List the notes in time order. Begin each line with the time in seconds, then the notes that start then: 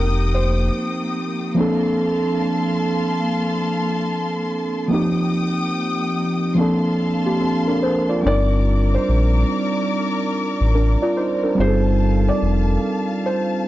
Already playing: F1 F3 A#3 C4 D#4 G4 A#4 G5 D#6
0.34 C5
1.54 F3 A#3 C4 F5 A5 C6
1.59 D4 A4
4.88 F3 A#3 C4 G5 D#6
4.92 D#4 G4
6.55 F3 A#3 C4 F5 A5 C6
6.59 D4 A4
7.26 A#3 G4
7.40 C4 A4
7.68 D4 A#4
7.83 C5
8.09 F4 D5
8.22 G1 G3 C4 D4 A#4 D5 D6
8.26 D#4 A#4 D5
8.94 C5
9.09 A#1
10.61 A1
10.75 D4 A#4
11.02 F4 D5
11.17 D#4 C5
11.43 D4 A#4
11.55 G1 G3 C4 D#4 F5 A5
11.60 F4 G#4 C5
11.68 A4
12.29 D5
12.42 F1
13.26 C5